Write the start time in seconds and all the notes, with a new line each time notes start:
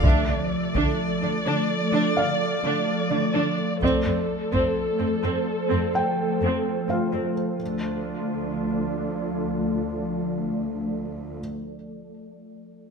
0.03 D3 F3 A3 D4 A4 D5 E5, taiko
0.28 D3 D4
0.75 D3 D4, taiko
1.22 D3 D4
1.46 D3 D4
1.93 D3 D4
2.16 D3 D4 F5
2.64 D3 D4
3.11 D3 D4
3.34 D3 D4
3.81 F2 F3 A3 C4 A4 C5 D5, taiko
4.06 F2 C4
4.53 F2 C4, taiko
5.00 F2 C4
5.23 F2 C4
5.70 F2 C4
5.94 F2 C4 G5
6.42 F2 C4
6.89 F2 C4 F4 F5
7.12 F2 C4
7.59 D2 F3 A3 D4 F4 A4 D5